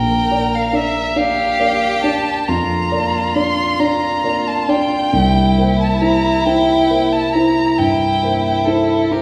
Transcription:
Already playing: grand piano A#1, violin A#4 G5
0.31 grand piano A#3 D5
0.55 violin F5
0.73 grand piano D4 D5, violin E5
1.16 grand piano D4 D5, violin G4 F5
1.59 grand piano A#3 D5
2.04 grand piano D4 D5, violin A5
2.48 grand piano F2, violin F4 A#5
2.91 grand piano A#3 D5
3.35 grand piano D4 D5, violin C6
3.80 grand piano D4 D5, violin A#5
4.24 grand piano A#3 D5
4.48 violin A5
4.69 grand piano D4 D5, violin G5
5.13 grand piano C2, violin E4
5.58 grand piano A#3 C5
5.81 violin A5
6.01 grand piano E4 C5, violin A#5
6.46 grand piano E4 C5, violin G5
6.90 grand piano A#3 C5
7.13 violin A5
7.33 grand piano E4 C5, violin A#5
7.78 grand piano G2, violin E4 G5
8.23 grand piano A#3 C5
8.45 violin G5
8.66 grand piano E4 C5, violin A4
9.11 grand piano E4 C5, violin G4 A#4

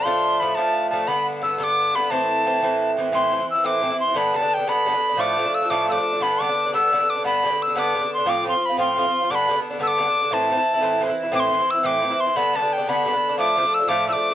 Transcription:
0.05 bouzouki A2 F3 A3 D4, tin whistle C6
0.40 bouzouki A2 F3 A3 D4, tin whistle B5
0.55 bouzouki A2 F3 A3 D4, tin whistle A5
0.90 bouzouki A2 F3 A3 D4, tin whistle A5
1.07 bouzouki G2 D3 B3 D4, tin whistle B5
1.42 bouzouki G2 D3 B3 D4, tin whistle E6
1.58 bouzouki G2 D3 B3 D4, tin whistle E6
1.63 tin whistle D6
1.93 bouzouki G2 D3 B3 D4, tin whistle B5
2.10 bouzouki A2 E3 C4 E4, tin whistle A5
2.45 bouzouki A2 E3 C4 E4
2.62 bouzouki A2 E3 C4 E4
2.97 bouzouki A2 E3 C4 E4
3.12 bouzouki A2 E3 C4 E4, tin whistle C6
3.31 bouzouki A2 E3 C4 E4
3.38 bouzouki E3 C4 E4
3.50 tin whistle E6
3.54 bouzouki E3 C4 E4
3.64 bouzouki A2 E3 C4 E4, tin whistle D6
3.81 bouzouki A2 E3 C4 E4
3.90 bouzouki E3 C4 E4
4.00 tin whistle C6
4.08 bouzouki E3 C4 E4
4.14 bouzouki G2 D3 B3 D4, tin whistle B5
4.33 bouzouki G2 D3 B3 D4, tin whistle A5
4.41 bouzouki D3 B3 D4
4.54 bouzouki D4, tin whistle G5
4.59 bouzouki D3 B3
4.67 bouzouki G2 D3 B3 D4, tin whistle B5
4.86 bouzouki G2 D3 B3 D4
4.94 bouzouki D3 B3 D4
5.09 bouzouki D3 B3 D4
5.17 bouzouki A2 F3 A3 D4, tin whistle D6
5.37 bouzouki A2 F3 A3 D4
5.45 bouzouki F3 A3 D4
5.54 tin whistle E6
5.62 bouzouki F3 A3 D4
5.70 bouzouki A2 F3 A3 D4, tin whistle D6
5.89 bouzouki A2 F3 A3 D4, tin whistle D6 E6
5.97 bouzouki F3 D4
6.12 bouzouki F3 A3 D4
6.20 bouzouki G2 D3 B3 D4, tin whistle B5
6.39 bouzouki G2 D3 B3 D4, tin whistle D6
6.49 bouzouki D3 B3 D4
6.66 bouzouki D3 B3 D4
6.73 bouzouki G2 D3 B3 D4, tin whistle E6
6.91 bouzouki G2 D3 B3 D4
7.00 bouzouki D3 B3 D4
7.10 tin whistle D6
7.15 bouzouki D3 B3 D4
7.24 bouzouki G2 D3 B3 D4, tin whistle B5
7.43 bouzouki G2 D3 B3 D4
7.50 bouzouki D3 B3 D4
7.62 tin whistle E6
7.67 bouzouki D3 B3 D4
7.75 bouzouki G2 D3 B3 D4, tin whistle D6
7.94 bouzouki G2 D3 B3 D4
8.01 bouzouki D3 B3 D4
8.14 bouzouki D4, tin whistle C6
8.19 bouzouki D3 B3
8.26 bouzouki A2 F3 C4 F4, tin whistle D6
8.44 bouzouki A2 F3 C4 F4
8.49 tin whistle C6
8.54 bouzouki F3 C4 F4
8.65 bouzouki F4, tin whistle B5
8.70 bouzouki F3 C4
8.77 bouzouki A2 F3 C4 F4, tin whistle C6
8.96 bouzouki A2 F3 C4 F4
9.04 bouzouki F3 C4 F4
9.22 bouzouki F3 C4 F4
9.30 bouzouki G2 D3 B3 D4, tin whistle D6
9.35 tin whistle B5
9.48 bouzouki G2 D3 B3 D4
9.56 bouzouki D3 B3 D4
9.71 bouzouki D3 B3 D4
9.79 bouzouki G2 D3 B3 D4, tin whistle E6
9.87 tin whistle D6
9.98 bouzouki G2 D3 B3 D4
10.07 bouzouki D3 B3 D4
10.22 bouzouki D3 B3 D4
10.31 bouzouki A2 E3 C4 E4, tin whistle A5
10.50 bouzouki A2 E3 C4 E4
10.57 bouzouki E3 C4 E4
10.74 bouzouki E3 C4 E4
10.81 bouzouki A2 E3 C4 E4
11.00 bouzouki A2 E3 C4 E4
11.08 bouzouki E3 C4 E4
11.23 bouzouki E3 C4 E4
11.32 bouzouki A2 E3 C4 E4, tin whistle D6
11.40 tin whistle C6
11.51 bouzouki A2 E3 C4 E4
11.59 bouzouki E3 C4 E4
11.70 tin whistle E6
11.74 bouzouki E3 C4 E4
11.83 bouzouki A2 E3 C4 E4, tin whistle D6
12.01 bouzouki A2 E3 C4 E4
12.10 bouzouki E3 C4 E4
12.20 tin whistle C6
12.27 bouzouki E3 C4 E4
12.36 bouzouki G2 D3 B3 D4, tin whistle B5
12.54 bouzouki G2 D3 B3 D4, tin whistle A5
12.62 bouzouki D3 B3 D4
12.73 tin whistle G5
12.78 bouzouki D3 B3 D4
12.87 bouzouki G2 D3 B3 D4, tin whistle B5
13.05 bouzouki G2 D3 B3 D4
13.13 bouzouki D3 B3 D4
13.29 bouzouki D3 B3 D4
13.38 bouzouki A2 F3 A3 D4, tin whistle D6
13.56 bouzouki A2 F3 A3 D4
13.63 bouzouki F3 A3 D4
13.74 tin whistle E6
13.79 bouzouki F3 A3 D4
13.88 bouzouki A2 F3 A3 D4, tin whistle D6
14.07 bouzouki A2 F3 A3 D4, tin whistle E6
14.13 bouzouki A3 D4, tin whistle D6
14.17 bouzouki F3
14.30 bouzouki D4

